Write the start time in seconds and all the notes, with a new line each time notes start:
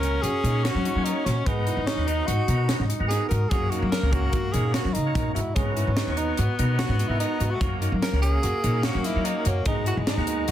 Already playing: C#2 A#3 C#4 F#4 A#4
0.03 C#4, closed hi-hat
0.22 F#2 F#4 G#4, closed hi-hat
0.44 A#2 A#3 C#4 D#4 F#4 A#4, closed hi-hat
0.64 C#4 F#4, snare, closed hi-hat
0.74 F#3
0.85 D#4, closed hi-hat
0.95 F#3 A#3 C#4 F#4 C#5
1.04 D#4, closed hi-hat
1.25 A#2 C#4 F#4, snare, closed hi-hat
1.46 G#2 B3 D#4 F#4 G#4 A#4, kick, closed hi-hat
1.67 E4, closed hi-hat
1.77 G#2
1.86 C#4 D#4, snare, closed hi-hat
1.97 D#2 B3 D#4 F#4 B4
2.07 D#4, closed hi-hat
2.27 G#2 F#4, closed hi-hat
2.48 B2 B3 D#4 F#4 A#4, closed hi-hat
2.69 C#4, snare, closed hi-hat
2.80 G#2
2.90 D#4, closed hi-hat
2.99 G#2 B3 D#4 F#4 A#4
3.08 D#4 G#4, snare, closed hi-hat
3.29 G#2 F#4 A#4, closed hi-hat
3.49 F#2 A#3 C#4 F#4 G#4, kick, closed hi-hat
3.53 A#4
3.70 D#4 F#4, closed hi-hat
3.82 F#3
3.92 C#4 A#4, snare, closed hi-hat
4.03 C#2 A#3 C#4 F#4 A#4
4.12 C#4 F#4, kick, closed hi-hat
4.33 F#2 F#4, kick, closed hi-hat
4.52 A#2 A#3 C#4 D#4 F#4 G#4 A#4, closed hi-hat
4.74 C#4 F#4, snare, closed hi-hat
4.85 F#3
4.93 C#3 D#4, closed hi-hat
5.06 A#3 C#4 F#4 A#4
5.15 A#2 D#4, kick, closed hi-hat
5.34 G#2 E4 F#4, closed hi-hat
5.55 G#2 B3 C#4 D#4 F#4 G#4, kick, closed hi-hat
5.59 A#4
5.76 E4, closed hi-hat
5.87 G#2
5.97 D#4, snare, closed hi-hat
6.07 D#2 B3 D#4 F#4 C#5
6.17 D#4, closed hi-hat
6.37 G#2 F#4, closed hi-hat
6.59 B2 B3 D#4 F#4 A#4, closed hi-hat
6.79 C#4 F#4, snare, closed hi-hat
6.89 G#2
6.99 D#4, closed hi-hat
7.08 G#2 B3 D#4 E4 F#4 A#4
7.20 D#4, closed hi-hat
7.40 G#2 F#4, closed hi-hat
7.50 F#4
7.55 A3
7.61 F#2 A#3 C#4 F#4 A#4, kick, closed hi-hat
7.82 D#4, closed hi-hat
7.92 F#3
8.02 C#4 A#4, snare, closed hi-hat
8.12 C#2 A#3 C#4 F#4 A#4
8.22 C#4 G#4, closed hi-hat
8.43 F#2 F#4, closed hi-hat
8.63 A#2 A#3 C#4 D#4 F#4 A#4, closed hi-hat
8.83 C#4 F#4, snare, closed hi-hat
8.95 F#3
9.04 D#4 E4, snare, closed hi-hat
9.15 F#3 A#3 C#4 F#4 A#4
9.25 D#4, closed hi-hat
9.45 F#2 C#4 F#4, closed hi-hat
9.66 G#2 G#3 B3 D#4 F#4 G#4 A#4, kick, closed hi-hat
9.86 E4 F#4, closed hi-hat
9.97 G#2
10.07 D#4, snare, closed hi-hat
10.17 D#2 B3 D#4 F#4 A#4
10.27 D#4, closed hi-hat
10.48 G#2, closed hi-hat